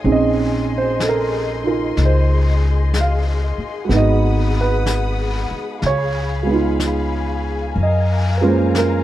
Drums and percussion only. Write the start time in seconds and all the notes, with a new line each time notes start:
0.04 brush sweep
1.00 brush sweep, snare, hi-hat pedal
1.97 brush sweep, snare
2.94 brush sweep, snare, hi-hat pedal
3.90 brush sweep, snare
4.86 brush sweep, snare, hi-hat pedal
5.82 brush sweep, snare
6.80 brush sweep, snare, hi-hat pedal
7.76 brush sweep
8.75 brush sweep, snare, hi-hat pedal